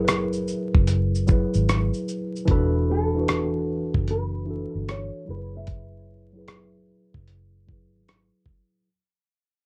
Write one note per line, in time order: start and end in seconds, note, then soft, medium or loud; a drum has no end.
0.00 0.51 F#1 medium
0.00 1.27 F#3 medium
0.00 1.28 E4 medium
0.00 2.05 E4 medium
0.00 1.30 G#4 medium
0.00 2.50 A#4 medium
0.00 0.05 B4 medium
0.05 1.19 B4 medium
0.05 cross-stick loud
0.05 closed hi-hat medium
0.05 shaker medium
0.33 shaker soft
0.48 shaker soft
0.75 1.44 F#1 medium
0.75 kick medium
0.87 closed hi-hat medium
0.87 shaker medium
1.15 shaker soft
1.27 2.35 F#3 medium
1.27 2.36 E4 medium
1.27 2.37 G#4 medium
1.27 kick medium
1.27 shaker medium
1.32 2.38 B4 medium
1.54 1.90 G#1 medium
1.54 shaker soft
1.69 cross-stick loud
1.69 closed hi-hat medium
1.69 shaker medium
1.94 shaker soft
2.08 shaker soft
2.36 shaker soft
2.45 3.90 E1 loud
2.45 3.01 E3 loud
2.45 3.02 D4 loud
2.45 3.03 F#4 loud
2.45 kick loud
2.45 closed hi-hat medium
2.51 3.04 A4 loud
2.51 2.90 B4 medium
2.91 4.10 A4 medium
3.15 4.34 E3 medium
3.15 4.35 D4 medium
3.15 4.35 F#4 medium
3.20 4.36 B4 medium
3.28 cross-stick loud
3.28 closed hi-hat medium
3.94 4.65 F#1 medium
3.94 kick medium
4.08 4.90 B4 medium
4.08 closed hi-hat soft
4.45 5.26 E3 medium
4.45 5.27 D4 medium
4.45 5.28 F#4 medium
4.50 5.29 A4 medium
4.75 5.10 G1 medium
4.88 5.26 C#5 medium
4.88 cross-stick loud
4.88 closed hi-hat medium
5.25 6.91 F#1 medium
5.25 6.13 F#3 medium
5.25 6.14 E4 medium
5.25 6.15 G#4 medium
5.30 5.38 A#4 medium
5.30 5.56 B4 medium
5.37 6.19 B4 medium
5.57 8.05 E5 medium
5.67 kick medium
5.67 closed hi-hat medium
6.33 7.53 F#3 medium
6.33 7.54 E4 medium
6.33 7.55 G#4 medium
6.39 7.56 B4 medium
6.48 cross-stick medium
6.48 closed hi-hat medium
7.14 7.95 F#1 medium
7.14 kick medium
7.28 closed hi-hat medium
7.67 8.75 F#3 medium
7.67 8.76 E4 medium
7.67 8.77 G#4 medium
7.67 kick medium
7.72 8.78 B4 medium
7.95 8.30 G#1 medium
8.08 cross-stick loud
8.08 closed hi-hat medium
8.46 kick medium